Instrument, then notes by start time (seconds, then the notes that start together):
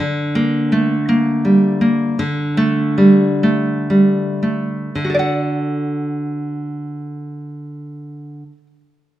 nylon-string guitar
0.00 D3
0.35 A#3
0.72 A3
1.09 A#3
1.45 G3
1.81 A#3
2.19 D3
2.57 A3
2.98 G3
3.43 A3
3.90 G3
4.43 A3
4.95 D3
5.05 F#4
5.10 A4
5.14 D5
5.19 F#5